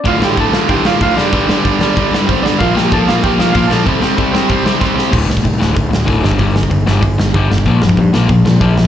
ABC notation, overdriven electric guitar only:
X:1
M:4/4
L:1/8
Q:1/4=189
K:Dm
V:1 name="Overdriven electric guitar" clef=bass
[D,,A,,D,] [D,,A,,D,] [D,,A,,D,] [D,,A,,D,] [D,,A,,D,] [D,,A,,D,] [D,,A,,D,] [G,,D,G,] | [G,,D,G,] [G,,D,G,] [G,,D,G,] [G,,D,G,] [G,,D,G,] [G,,D,G,] [G,,D,G,] [G,,D,G,] | [B,,F,B,] [B,,F,B,] [B,,F,B,] [B,,F,B,] [B,,F,B,] [B,,F,B,] [B,,F,B,] [B,,F,B,] | [C,G,C] [C,G,C] [C,G,C] [C,G,C] [C,G,C] [C,G,C] [C,G,C] [C,G,C] |
[D,,A,,D,] [D,,A,,] [D,,A,,] [D,,A,,D,] [D,,A,,] [D,,A,,] [D,,A,,D,] [G,,D,G,] | [G,,D,G,] [G,,D,] [G,,D,] [G,,D,G,] [G,,D,] [G,,D,] [G,,D,G,] [G,,D,] | [B,,F,B,] [B,,F,] [B,,F,] [B,,F,B,] [B,,F,] [B,,F,] [B,,F,B,] [B,,F,] |]